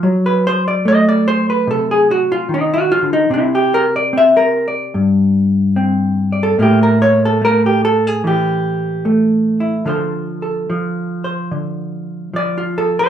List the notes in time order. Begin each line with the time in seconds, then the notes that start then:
0.03 F#3
0.26 B4
0.47 C5
0.68 D5
0.85 A3 D#5
1.09 D5
1.28 C5
1.50 B4
1.67 C3 A4
1.91 G#4
2.11 F#4
2.32 F4
2.49 D#3
2.54 D#4
2.74 F#4
2.92 F4
3.02 D3
3.13 D#4
3.30 C3 C4 E4
3.55 G4
3.74 A#4
3.96 D5
4.13 C4
4.18 E5
4.37 A#4
4.68 D5
4.94 G2
5.76 C4
6.32 D5
6.43 A4
6.58 A2 A3 A#3 E4 G4
6.83 A#4
7.02 C#5
7.25 A4
7.42 A3 A#4
7.66 G4
7.85 A4
8.07 G#4
8.24 E3 G4
9.05 A3
9.60 E4
9.85 D3 F3 F4 A4 C5
10.42 A4
10.70 F3
11.24 C5
11.51 D3
12.34 F3 D5
12.58 F4
12.78 A4
12.99 C5